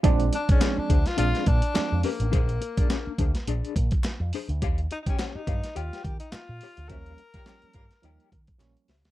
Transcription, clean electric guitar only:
X:1
M:4/4
L:1/16
Q:"Swing 16ths" 1/4=105
K:Bbmix
V:1 name="Clean electric guitar"
[DAc] z2 [DAd] [DAd] z [DAc] z [DAd]2 z4 [DAc] z | [DAc] z2 [DAd] [DAd] z [DAc] z [DAd]2 z4 [DAc] z | [G_df] z2 [Gdg] [Gdg] z [Gdf] z [Gdg]2 z4 [Gdf] z | [G_df] z2 [Gdg] [Gdg] z [Gdf] z [Gdg]2 z4 [Gdf] z |]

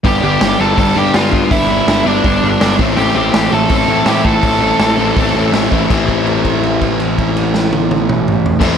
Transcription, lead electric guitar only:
X:1
M:4/4
L:1/8
Q:1/4=164
K:Am
V:1 name="Lead electric guitar"
[Gg] [Gg]2 [Aa] [Aa] [Gg] [Ff]2 | [Ee]3 [Dd]4 z | [Gg] [Gg]2 [Aa]3 [Gg] [Aa]- | [Aa]6 z2 |
z8 | z8 |]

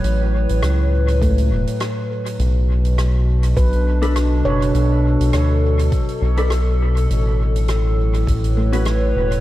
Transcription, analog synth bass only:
X:1
M:4/4
L:1/16
Q:"Swing 16ths" 1/4=102
K:Bm
V:1 name="Analog synth bass" clef=bass
A,,,3 A,,, C,,6 E,,, z4 z | B,,,8 B,,,6 F,,,2 | B,,,3 B,,, D,,4 z2 B,,,6 | A,,,8 A,,,6 E,,,2 |]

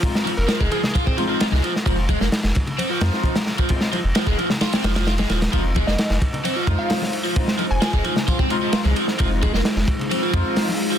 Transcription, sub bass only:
X:1
M:4/4
L:1/16
Q:1/4=131
K:Fm
V:1 name="Sub bass" clef=bass
z3 F,,, z F,,, z6 z C,, z2 | F,,,3 F,,, z F,,, z4 F,, z4 z | z3 F,,, z F,,, z4 F,,,4 E,,,2 | F,,,3 F,,, z F,,, z4 F,, z4 z |
z3 F,,, z F,,, z6 z C,, z2 | F,,,3 F,,, z F,,, z4 F,, z4 z |]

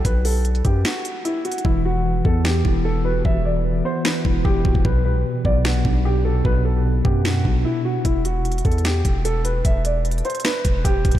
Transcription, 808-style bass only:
X:1
M:4/4
L:1/16
Q:1/4=150
K:Em
V:1 name="808-style bass" clef=bass
B,,,6 F,,2 z8 | E,,,6 E,,4 E,,,6 | E,,,6 z4 E,,,2 E,,,2 D,,, E,,, | B,,,2 C,, B,,, z2 B,,,4 B,,,6 |
B,,,6 F,,4 B,,,2 z4 | E,,,6 E,,4 E,,,6 | E,,,6 z4 E,,,2 E,,,2 D,,, E,,, |]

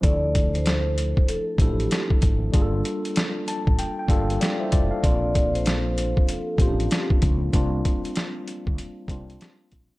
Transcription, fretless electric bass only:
X:1
M:4/4
L:1/16
Q:"Swing 16ths" 1/4=96
K:Dm
V:1 name="Fretless electric bass" clef=bass
D,,6- D,, z3 A,,,2 z2 ^G,,,2 | G,,,2 z4 z A,,, z2 G,,,2 z2 F,,, z | B,,,6- B,,, z3 A,,,2 z2 ^C,,2 | C,,2 z4 z D,, z2 C,,2 z2 B,,, z |]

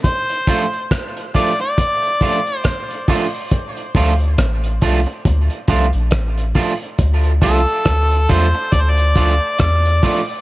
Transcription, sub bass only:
X:1
M:4/4
L:1/16
Q:"Swing 16ths" 1/4=69
K:Dm
V:1 name="Sub bass" clef=bass
z16 | z2 D,,2 A,,,2 C,, z D,, z C,, B,,, A,,,2 z2 | D,,2 C,, z D,,2 E,, z D,,2 D,, z E,,2 z2 |]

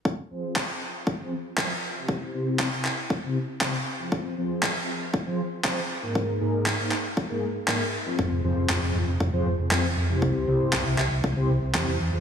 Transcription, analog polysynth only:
X:1
M:4/4
L:1/16
Q:1/4=118
K:Fm
V:1 name="Analog polysynth"
z2 [F,CFAc]3 [F,CFA] z3 [F,CFAc] z2 [F,CFAc] z2 [C,C=EGc]- | [C,C=EGc]2 [C,CEGc]3 z4 [C,CEGc] z2 [C,CEGc] z2 [F,CFAc]- | [F,CFAc]2 [F,CFAc]3 [F,C] z3 [F,CFAc] z2 [F,CFc] z2 [A,,B,EAB]- | [A,,B,EAB]2 [A,,B,EAB]3 [A,,B,EAc] z3 [A,,B,EAB] z2 [A,,B,EB] z2 [F,CFAc]- |
[F,CFAc]2 [F,CFAc]3 [F,CF] z3 [F,CFAc] z2 [F,CFAc] z2 [C,C=EGc]- | [C,C=EGc]2 [C,CEGc]3 [C,CEG=e] z3 [C,CEGc] z2 [C,CEGc] z2 [F,CFAc] |]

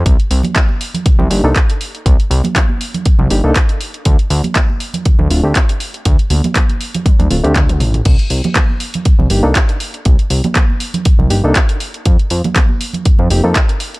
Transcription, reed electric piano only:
X:1
M:4/4
L:1/16
Q:"Swing 16ths" 1/4=120
K:Cdor
V:1 name="Reed electric piano"
z8 z2 [B,DEG] [B,DEA] z4 | z8 z2 [B,DEG] [B,DEA] z4 | z8 z2 [A,CDF] [A,CDG] z4 | z8 z2 [A,CDF] [A,CDG] z4 |
z8 z2 [B,DEG] [B,DEA] z4 | z8 z2 [B,DEG] [B,DEA] z4 | z8 z2 [B,CEG] [B,CEA] z4 |]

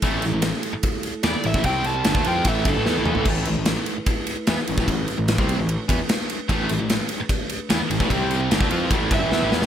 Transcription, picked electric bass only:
X:1
M:4/4
L:1/16
Q:1/4=149
K:Am
V:1 name="Picked electric bass" clef=bass
A,,,2 A,,, A,,,2 z6 z E,, z A,,, A,,, | C,,4 G,,, D,, F,,2 A,,,2 G,,, A,,, E,, A,,, E,, A,,, | A,,,2 A,,, A,,,2 z6 z E,, z A,,, A,,, | A,,,2 z A,,,2 C,,2 A,,,2 z E,, z4 z |
A,,,2 A,,, A,,,2 z6 z E,, z A,,, A,,, | C,,4 G,,, D,, F,,2 A,,,2 G,,, A,,, E,, A,,, E,, A,,, |]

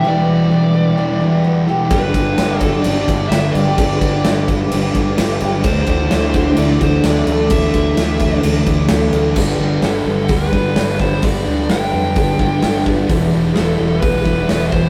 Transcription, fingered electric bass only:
X:1
M:4/4
L:1/8
Q:1/4=129
K:G
V:1 name="Fingered electric bass" clef=bass
z8 | G,,, G,,, G,,,2 G,,, G,,, G,,, G,,, | G,,, G,,, G,,,2 G,,, G,,, G,,, G,,, | D,, D,, D,,2 D,, D,, D,, D,, |
D,, D,, D,,2 D,, D,, D,, D,, | G,,, G,,, G,,, G,,, D,, G,,, G,,, G,,, | G,,, D,, G,,, =F,, G,,, G,,, G,,, G,,, | E,,, E,,, E,,, E,,, B,,, E,,, E,,, E,,, |]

